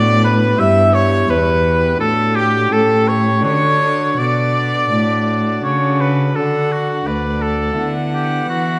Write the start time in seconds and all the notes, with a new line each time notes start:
Already playing: A2 B3 D4 F#4 D5
0.24 B4
0.54 B3 E4 G4
0.58 G2 E5
0.94 C#5
1.29 E2 B4
1.95 D4 F#4
2.00 A2 A4
2.35 G4
2.68 C#4 G4 A4
2.72 A2 A4
3.08 C#5
3.40 D4 F#4 A4
3.44 D3 C#5
4.18 B2 D5
4.91 A2
5.64 C#3 C#5
6.00 B4
6.32 D4 F#4 A4
6.36 D3 F#5
6.72 F#4
7.06 D2 B4 D5
7.42 A4
7.72 B3 E4
7.76 D3 F#5
8.13 G4
8.47 E3 F#4